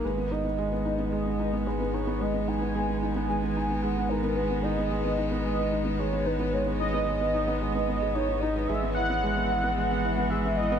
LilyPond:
<<
  \new Staff \with { instrumentName = "Soft synth lead" } { \time 4/4 \key gis \minor \tempo 4 = 111 b'8 dis''4. dis''4 b'8 cis''8 | dis''8 gis''4. gis''4 fis''8 ais'8 | b'8 dis''4. dis''4 cis''8 b'8 | cis''8 dis''4. dis''4 cis''8 dis''8 |
e''8 fis''4. fis''4 e''8 dis''8 | }
  \new Staff \with { instrumentName = "Felt piano" } { \time 4/4 \key gis \minor gis16 b16 dis'16 b16 gis16 b16 dis'16 b16 gis16 b16 dis'16 b16 gis16 b16 dis'16 b16 | gis16 b16 dis'16 b16 gis16 b16 dis'16 b16 gis16 b16 dis'16 b16 gis16 b16 dis'16 b16 | gis16 b16 dis'16 b16 gis16 b16 dis'16 b16 gis16 b16 dis'16 b16 gis16 b16 dis'16 b16 | gis16 b16 dis'16 b16 gis16 b16 dis'16 b16 gis16 b16 b16 gis'16 dis'16 dis'16 dis'16 b'16 |
gis16 b16 e'16 b16 gis16 b16 e'16 b16 gis16 b16 e'16 b16 gis16 b16 e'16 b16 | }
  \new Staff \with { instrumentName = "String quartet" } { \clef bass \time 4/4 \key gis \minor << { <gis b>1~ | <gis b>1~ | <gis b>1~ | <gis b>1~ |
<gis b>1 | } \\ { dis1~ | dis1~ | dis1~ | dis1 |
e1 | } >> }
  \new Staff \with { instrumentName = "Sub bass" } { \clef bass \time 4/4 \key gis \minor gis,,1~ | gis,,1~ | gis,,1~ | gis,,1 |
gis,,1 | }
>>